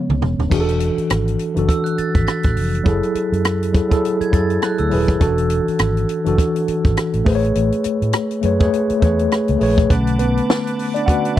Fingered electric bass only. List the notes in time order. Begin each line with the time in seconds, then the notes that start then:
0.09 C#2
0.22 E1
0.39 D#1
0.51 E1
0.98 muted fingered electric bass stroke
1.11 G#1
1.57 F#1
1.98 muted fingered electric bass stroke
2.15 G#1
2.45 A1
2.56 F1
2.86 F#1
3.15 muted fingered electric bass stroke
3.32 F#2
4.21 muted fingered electric bass stroke
4.33 F#2
4.79 D2
4.92 D#1
5.21 E1
5.68 muted fingered electric bass stroke
5.80 G#1
6.27 F#1
6.68 muted fingered electric bass stroke
6.85 G#1
7.14 A1
7.26 A1
7.56 A1
7.86 muted fingered electric bass stroke
8.02 A2
8.44 F#2
8.90 muted fingered electric bass stroke
9.03 E2
9.49 C#2
9.61 A#1
9.90 B1